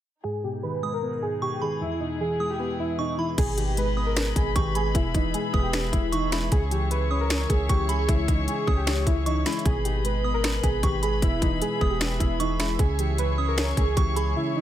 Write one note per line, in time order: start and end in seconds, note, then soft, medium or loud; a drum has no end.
0.24 1.21 G#2 medium
0.24 3.35 B2 medium
0.24 1.80 G#3 medium
0.24 1.80 D#4 medium
0.24 0.42 G#4 medium
0.24 3.35 G#4 medium
0.44 1.40 B2 medium
0.44 0.62 G4 medium
0.63 1.61 D#3 medium
0.63 0.91 B4 medium
0.83 1.81 G#3 medium
0.83 1.38 D#6 medium
0.93 1.21 A#4 medium
1.03 1.81 B3 loud
1.22 1.81 G#2 medium
1.22 1.41 G#4 medium
1.42 1.81 B2 medium
1.42 1.60 G4 medium
1.42 1.61 C#6 medium
1.62 1.81 D#3 medium
1.62 1.80 G#4 medium
1.62 1.80 B5 medium
1.81 2.78 E2 medium
1.81 3.36 G#3 medium
1.81 3.36 E4 medium
1.81 2.00 E4 medium
2.00 2.97 B2 medium
2.00 2.19 D#4 medium
2.20 3.17 E3 medium
2.20 2.48 G#4 medium
2.40 3.38 G#3 medium
2.40 2.95 D#6 medium
2.50 2.78 G4 medium
2.60 3.38 B3 loud
2.79 3.38 E2 medium
2.79 2.98 E4 medium
2.98 3.37 B2 medium
2.98 3.17 D#4 medium
2.98 3.17 C#6 medium
3.18 3.38 E3 medium
3.18 3.37 E4 medium
3.18 3.37 B5 medium
3.38 4.32 G#1 loud
3.38 4.35 B2 loud
3.38 12.75 G#4 medium
3.38 3.57 G#4 medium
3.38 6.49 B4 medium
3.38 4.93 D#5 medium
3.38 6.49 B5 medium
3.38 kick loud
3.38 closed hi-hat medium
3.38 crash loud
3.57 4.54 D#3 medium
3.57 3.76 G4 medium
3.57 closed hi-hat medium
3.77 4.74 G#3 medium
3.77 4.05 B4 medium
3.77 closed hi-hat medium
3.97 4.95 B3 medium
3.97 4.52 D#6 medium
4.07 4.34 A#4 medium
4.16 4.95 B4 loud
4.16 finger snap loud
4.16 snare loud
4.16 closed hi-hat medium
4.36 4.55 G#1 loud
4.36 4.94 B2 medium
4.36 4.54 G#4 medium
4.36 kick medium
4.36 closed hi-hat medium
4.55 4.93 G#1 loud
4.55 4.95 D#3 medium
4.55 4.74 G4 medium
4.55 4.74 C#6 loud
4.55 kick loud
4.55 closed hi-hat medium
4.75 4.95 G#3 medium
4.75 4.94 G#4 medium
4.75 4.94 B5 medium
4.75 closed hi-hat medium
4.95 5.14 E1 loud
4.95 5.92 B2 loud
4.95 5.14 E4 loud
4.95 6.50 E5 medium
4.95 kick loud
4.95 closed hi-hat medium
5.14 5.33 E1 loud
5.14 6.12 E3 medium
5.14 5.33 D#4 medium
5.14 kick medium
5.14 closed hi-hat medium
5.34 6.31 G#3 medium
5.34 5.62 G#4 medium
5.34 closed hi-hat medium
5.54 5.91 E1 loud
5.54 6.52 B3 medium
5.54 6.09 D#6 medium
5.54 kick medium
5.63 5.91 G4 medium
5.73 6.52 B4 loud
5.73 finger snap loud
5.73 snare loud
5.73 closed hi-hat medium
5.92 6.49 E1 loud
5.92 6.52 B2 medium
5.92 6.11 E4 medium
5.92 kick medium
5.92 closed hi-hat medium
6.12 6.52 E3 medium
6.12 6.31 D#4 medium
6.12 6.31 C#6 loud
6.12 closed hi-hat medium
6.32 6.52 G#3 medium
6.32 6.51 E4 medium
6.32 6.51 B5 medium
6.32 finger snap medium
6.32 snare loud
6.32 closed hi-hat medium
6.51 7.46 C#2 loud
6.51 7.49 C#3 loud
6.51 6.70 G#4 medium
6.51 9.62 C#5 medium
6.51 9.62 E5 medium
6.51 9.62 C#6 medium
6.51 kick loud
6.51 closed hi-hat medium
6.71 7.68 E3 medium
6.71 6.90 G4 medium
6.71 closed hi-hat medium
6.91 7.88 G#3 medium
6.91 7.19 B4 medium
6.91 closed hi-hat medium
7.11 8.09 C#4 medium
7.11 7.66 D#6 medium
7.21 7.48 A#4 medium
7.30 8.28 C#5 medium
7.30 finger snap loud
7.30 snare loud
7.30 closed hi-hat medium
7.50 7.69 C#2 loud
7.50 8.07 C#3 medium
7.50 7.68 G#4 medium
7.50 kick medium
7.50 closed hi-hat medium
7.69 8.07 C#2 loud
7.69 8.27 E3 medium
7.69 7.88 G4 medium
7.69 7.88 C#6 medium
7.69 kick loud
7.69 closed hi-hat medium
7.89 8.47 G#3 medium
7.89 8.07 G#4 medium
7.89 8.07 B5 medium
7.89 closed hi-hat medium
8.08 8.27 C#2 loud
8.08 9.06 C#3 loud
8.08 8.27 E4 medium
8.08 kick loud
8.08 closed hi-hat medium
8.28 8.47 C#2 loud
8.28 9.25 E3 medium
8.28 8.47 D#4 medium
8.28 kick medium
8.28 closed hi-hat medium
8.48 9.45 G#3 medium
8.48 8.76 G#4 medium
8.48 closed hi-hat medium
8.67 9.05 C#2 loud
8.67 9.65 C#4 medium
8.67 9.23 D#6 medium
8.67 kick medium
8.77 9.05 G4 medium
8.87 9.65 C#5 loud
8.87 finger snap loud
8.87 snare loud
8.87 closed hi-hat medium
9.07 9.44 C#2 loud
9.07 9.66 C#3 medium
9.07 9.25 E4 medium
9.07 kick medium
9.07 closed hi-hat medium
9.26 9.65 E3 medium
9.26 9.45 D#4 medium
9.26 9.45 C#6 loud
9.26 closed hi-hat medium
9.46 9.65 G#3 medium
9.46 9.65 E4 medium
9.46 9.65 B5 medium
9.46 finger snap medium
9.46 snare loud
9.46 closed hi-hat medium
9.52 closed hi-hat medium
9.59 closed hi-hat soft
9.65 10.60 G#1 loud
9.65 10.62 B2 loud
9.65 9.84 G#4 loud
9.65 12.76 B4 medium
9.65 11.21 D#5 medium
9.65 12.76 B5 medium
9.65 kick loud
9.65 closed hi-hat medium
9.85 10.82 D#3 medium
9.85 10.03 G4 medium
9.85 closed hi-hat medium
10.05 11.02 G#3 medium
10.05 10.33 B4 medium
10.05 closed hi-hat medium
10.24 11.22 B3 medium
10.24 10.80 D#6 medium
10.34 10.62 A#4 medium
10.44 11.22 B4 loud
10.44 finger snap loud
10.44 snare loud
10.44 closed hi-hat medium
10.63 10.82 G#1 loud
10.63 11.21 B2 medium
10.63 10.82 G#4 medium
10.63 kick medium
10.63 closed hi-hat medium
10.83 11.21 G#1 loud
10.83 11.22 D#3 medium
10.83 11.01 G4 medium
10.83 11.02 C#6 medium
10.83 kick loud
10.83 closed hi-hat medium
11.03 11.22 G#3 medium
11.03 11.21 G#4 medium
11.03 11.21 B5 medium
11.03 closed hi-hat medium
11.22 11.41 E1 loud
11.22 12.19 B2 loud
11.22 11.41 E4 medium
11.22 14.61 E5 medium
11.22 kick loud
11.22 closed hi-hat medium
11.42 11.61 E1 loud
11.42 12.39 E3 medium
11.42 11.61 D#4 medium
11.42 kick medium
11.42 closed hi-hat medium
11.62 12.58 G#3 medium
11.62 11.89 G#4 medium
11.62 closed hi-hat medium
11.81 12.19 E1 loud
11.81 12.79 B3 medium
11.81 12.36 D#6 medium
11.81 kick medium
11.90 12.18 G4 medium
12.01 12.79 B4 medium
12.01 finger snap loud
12.01 snare loud
12.01 closed hi-hat medium
12.20 12.77 E1 loud
12.20 12.79 B2 medium
12.20 12.38 E4 medium
12.20 kick medium
12.20 closed hi-hat medium
12.40 12.79 E3 medium
12.40 12.58 D#4 medium
12.40 12.59 C#6 loud
12.40 closed hi-hat medium
12.60 12.79 G#3 medium
12.60 12.78 E4 medium
12.60 12.78 B5 medium
12.60 finger snap medium
12.60 snare loud
12.60 closed hi-hat medium
12.79 13.73 C#2 loud
12.79 13.76 C#3 loud
12.79 12.97 G#4 medium
12.79 14.61 G#4 medium
12.79 14.61 C#5 medium
12.79 14.61 C#6 medium
12.79 kick loud
12.79 closed hi-hat medium
12.99 13.95 E3 medium
12.99 13.18 G4 medium
12.99 closed hi-hat medium
13.18 14.15 G#3 medium
13.18 13.46 B4 medium
13.18 closed hi-hat medium
13.38 14.36 C#4 medium
13.38 13.93 D#6 medium
13.48 13.76 A#4 medium
13.58 14.56 C#5 loud
13.58 finger snap loud
13.58 snare loud
13.58 closed hi-hat medium
13.77 13.96 C#2 loud
13.77 14.35 C#3 medium
13.77 13.96 G#4 medium
13.77 kick medium
13.77 closed hi-hat medium
13.96 14.35 C#2 loud
13.96 14.55 E3 loud
13.96 14.15 G4 medium
13.96 14.15 C#6 loud
13.96 kick loud
13.96 closed hi-hat medium
14.16 14.61 G#3 medium
14.16 14.35 G#4 medium
14.16 14.35 B5 medium
14.16 closed hi-hat medium
14.36 14.61 C#3 loud
14.36 14.55 E4 medium
14.56 14.61 E3 medium
14.56 14.61 D#4 medium